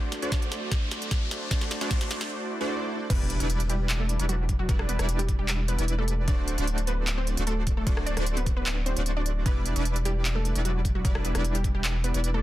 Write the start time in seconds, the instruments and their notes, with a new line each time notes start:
Already playing: sub bass D1, supersaw synth A3 D4 F#4 C5 D5, riser
0.12 snare, closed hi-hat
0.22 sub bass D1, supersaw synth A3 D4 F#4 C5 D5, closed hi-hat
0.32 kick, snare, closed hi-hat
0.42 closed hi-hat
0.52 snare, closed hi-hat
0.71 kick, snare, closed hi-hat
0.91 snare, closed hi-hat
1.02 closed hi-hat
1.11 kick, snare, closed hi-hat
1.31 snare, closed hi-hat
1.51 sub bass D1, supersaw synth A3 D4 F#4 C5 D5, kick, snare, closed hi-hat
1.61 snare
1.71 snare, closed hi-hat
1.81 sub bass D1, supersaw synth A3 D4 F#4 C5 D5, snare, closed hi-hat
1.91 kick, snare, closed hi-hat
2.01 snare, closed hi-hat
2.11 snare, closed hi-hat
2.21 snare
2.30 swell
2.61 supersaw synth A3 D4 F#4 C5 D5
3.10 sub bass E1, supersaw synth G3 D4 E4 B4 D5, synth pluck B3 B4, kick, closed hi-hat, crash, impact
3.30 closed hi-hat
3.40 sub bass E1, supersaw synth G3 D4 E4 B4 D5, closed hi-hat
3.50 closed hi-hat
3.60 closed hi-hat
3.69 synth pluck G3 G4, closed hi-hat
3.89 clap, closed hi-hat
4.00 synth pluck A3 A4
4.09 closed hi-hat
4.20 sub bass E1, supersaw synth G3 D4 E4 B4 D5, closed hi-hat
4.29 synth pluck F#3 F#4, closed hi-hat
4.49 kick, closed hi-hat
4.59 synth pluck F#3 F#4
4.69 sub bass E1, supersaw synth G3 D4 E4 B4 D5, kick, closed hi-hat
4.79 cross-stick
4.89 synth pluck B3 B4, closed hi-hat
4.99 sub bass E1, supersaw synth G3 D4 E4 B4 D5, cross-stick, closed hi-hat
5.09 closed hi-hat
5.19 synth pluck G3 G4, closed hi-hat
5.29 kick, closed hi-hat
5.39 synth pluck G3 G4
5.48 clap, closed hi-hat
5.68 synth pluck B3 B4, closed hi-hat
5.79 sub bass E1, supersaw synth G3 D4 E4 B4 D5, closed hi-hat
5.88 closed hi-hat
5.98 synth pluck A3 A4
6.08 closed hi-hat
6.28 sub bass D1, supersaw synth A3 D4 F#4 C5 D5, synth pluck D4 D5, kick, closed hi-hat
6.48 closed hi-hat
6.58 sub bass D1, supersaw synth A3 D4 F#4 C5 D5, closed hi-hat
6.67 closed hi-hat
6.78 closed hi-hat
6.87 synth pluck B3 B4, closed hi-hat
7.07 clap, closed hi-hat
7.18 synth pluck C4 C5
7.27 closed hi-hat
7.37 sub bass D1, supersaw synth A3 D4 F#4 C5 D5, closed hi-hat
7.47 synth pluck A3 A4, closed hi-hat
7.67 kick, closed hi-hat
7.77 synth pluck A3 A4
7.87 sub bass D1, supersaw synth A3 D4 F#4 C5 D5, kick, closed hi-hat
7.97 cross-stick
8.06 synth pluck D4 D5, closed hi-hat
8.17 sub bass D1, supersaw synth A3 D4 F#4 C5 D5, cross-stick, closed hi-hat
8.26 closed hi-hat
8.37 synth pluck B3 B4, closed hi-hat
8.46 kick, closed hi-hat
8.57 synth pluck B3 B4
8.66 clap, closed hi-hat
8.86 synth pluck C4 C5, closed hi-hat
8.96 sub bass D1, supersaw synth A3 D4 F#4 C5 D5, closed hi-hat
9.06 closed hi-hat
9.17 synth pluck D4 D5
9.26 closed hi-hat
9.46 sub bass E1, supersaw synth G3 D4 E4 B4 D5, synth pluck B3 B4, kick, closed hi-hat
9.66 closed hi-hat
9.76 sub bass E1, supersaw synth G3 D4 E4 B4 D5, closed hi-hat
9.85 closed hi-hat
9.96 closed hi-hat
10.05 synth pluck G3 G4, closed hi-hat
10.25 clap, closed hi-hat
10.35 synth pluck A3 A4
10.45 closed hi-hat
10.55 sub bass E1, supersaw synth G3 D4 E4 B4 D5, closed hi-hat
10.65 synth pluck F#3 F#4, closed hi-hat
10.85 kick, closed hi-hat
10.95 synth pluck F#3 F#4
11.05 sub bass E1, supersaw synth G3 D4 E4 B4 D5, kick, closed hi-hat
11.15 cross-stick
11.25 synth pluck B3 B4, closed hi-hat
11.35 sub bass E1, supersaw synth G3 D4 E4 B4 D5, cross-stick, closed hi-hat
11.45 closed hi-hat
11.55 synth pluck G3 G4, closed hi-hat
11.64 kick, closed hi-hat
11.75 synth pluck G3 G4
11.84 clap, closed hi-hat
12.04 synth pluck B3 B4, closed hi-hat
12.14 sub bass E1, supersaw synth G3 D4 E4 B4 D5, closed hi-hat
12.24 closed hi-hat
12.34 synth pluck A3 A4